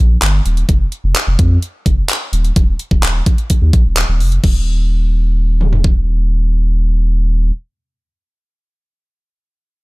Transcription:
0.00 0.17 A#1 loud
0.22 0.41 G1 loud
0.22 clap loud
0.22 closed hi-hat medium
0.46 0.64 D#1 medium
0.46 closed hi-hat medium
0.57 closed hi-hat medium
0.69 0.88 F1 loud
0.69 kick loud
0.69 closed hi-hat medium
0.92 closed hi-hat medium
1.04 1.13 F1 loud
1.15 clap loud
1.15 closed hi-hat medium
1.27 1.37 F1 loud
1.39 1.58 F2 loud
1.39 kick loud
1.39 closed hi-hat medium
1.62 closed hi-hat loud
1.86 2.05 F1 medium
1.86 kick loud
1.86 closed hi-hat medium
2.09 clap loud
2.09 closed hi-hat medium
2.33 2.51 D#1 loud
2.33 closed hi-hat medium
2.45 closed hi-hat medium
2.56 2.75 D#1 loud
2.56 kick loud
2.56 closed hi-hat medium
2.79 closed hi-hat medium
2.91 3.01 D#1 loud
2.91 kick medium
3.03 3.22 D#1 loud
3.03 clap loud
3.03 closed hi-hat medium
3.26 kick loud
3.26 closed hi-hat medium
3.38 closed hi-hat medium
3.50 kick medium
3.50 closed hi-hat medium
3.61 3.71 D#2 loud
3.73 3.83 A#1 medium
3.73 kick loud
3.73 closed hi-hat medium
3.85 4.04 D#1 medium
3.97 clap loud
3.97 closed hi-hat medium
4.08 4.22 D#1 medium
4.20 4.39 F1 loud
4.20 open hi-hat medium
4.32 closed hi-hat medium
4.44 7.51 D#1 loud
4.44 kick loud
4.44 crash medium
5.61 mid tom medium
5.73 floor tom medium
5.84 kick medium

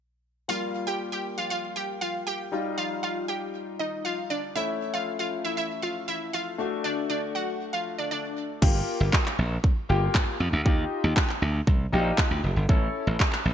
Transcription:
0.48 2.48 G3 medium
0.48 2.48 A#3 medium
0.48 2.48 F4 medium
0.48 0.60 F4 medium
0.48 0.60 F5 loud
0.87 0.99 G4 medium
0.87 0.98 G5 medium
1.12 1.24 G4 medium
1.12 1.24 G5 medium
1.38 1.49 F4 medium
1.38 1.49 F5 medium
1.50 1.73 F4 medium
1.50 1.73 F5 medium
1.76 1.88 G4 medium
1.76 1.87 G5 medium
2.01 2.13 F4 medium
2.01 2.13 F5 medium
2.27 2.38 G4 medium
2.27 2.38 G5 medium
2.52 4.51 G3 medium
2.52 4.52 D#4 medium
2.52 4.52 F4 medium
2.78 2.89 F4 medium
2.78 2.89 F5 medium
3.03 3.26 F4 medium
3.03 3.26 F5 medium
3.28 3.40 G4 medium
3.28 3.40 G5 medium
3.79 4.02 D#4 medium
3.79 4.02 D#5 medium
4.05 4.17 F4 medium
4.05 4.16 F5 medium
4.30 4.42 D4 medium
4.30 4.41 D5 medium
4.55 6.55 A3 medium
4.55 6.55 C#4 medium
4.55 6.55 E4 medium
4.55 4.67 E4 medium
4.55 4.67 E5 loud
4.94 5.05 F4 medium
4.94 5.05 F5 medium
5.19 5.31 F4 medium
5.19 5.30 F5 medium
5.45 5.56 E4 medium
5.45 5.56 E5 medium
5.57 5.80 E4 medium
5.57 5.80 E5 medium
5.82 5.94 F4 medium
5.82 5.94 F5 medium
6.08 6.20 E4 medium
6.08 6.19 E5 medium
6.33 6.45 F4 medium
6.33 6.45 F5 medium
6.58 8.58 A3 medium
6.58 8.58 D4 medium
6.58 8.58 F#4 medium
6.84 6.96 D4 medium
6.84 6.96 D5 medium
7.10 7.33 D4 medium
7.10 7.32 D5 medium
7.35 7.47 F#4 medium
7.35 7.46 F#5 medium
7.73 7.85 F4 medium
7.73 7.84 F5 medium
7.98 8.10 D4 soft
7.98 8.10 D5 medium
8.11 8.48 D4 medium
8.11 8.47 D5 medium
8.62 8.80 G1 loud
8.62 9.22 A#3 medium
8.62 9.22 F4 medium
8.62 9.22 G4 medium
8.62 kick loud
8.62 crash medium
9.00 9.09 G1 medium
9.13 kick loud
9.13 clap loud
9.26 clap medium
9.39 9.57 A#1 medium
9.64 kick loud
9.89 10.07 G1 medium
9.89 10.34 A#3 medium
9.89 10.34 F4 medium
9.89 10.34 G4 loud
10.15 10.24 G2 loud
10.15 kick loud
10.15 clap loud
10.40 10.49 F2 medium
10.53 10.62 D2 medium
10.65 10.84 D#2 loud
10.65 11.25 D#4 medium
10.65 11.26 F4 medium
10.65 11.26 G4 medium
10.65 kick loud
11.04 11.13 D#2 medium
11.17 kick loud
11.17 clap loud
11.29 clap medium
11.42 11.60 D2 medium
11.67 11.85 C2 medium
11.67 kick loud
11.92 12.11 A#1 medium
11.92 12.38 D#4 medium
11.92 12.38 F4 medium
11.92 12.38 G4 loud
12.18 kick loud
12.18 clap loud
12.31 12.40 D2 medium
12.44 12.53 F1 medium
12.56 12.65 G1 medium
12.69 12.87 A1 loud
12.69 13.29 C#4 medium
12.69 13.29 E4 medium
12.69 13.29 A4 medium
12.69 kick loud
13.07 13.16 A1 loud
13.20 kick loud
13.20 clap loud
13.33 clap medium
13.45 13.54 A#1 medium

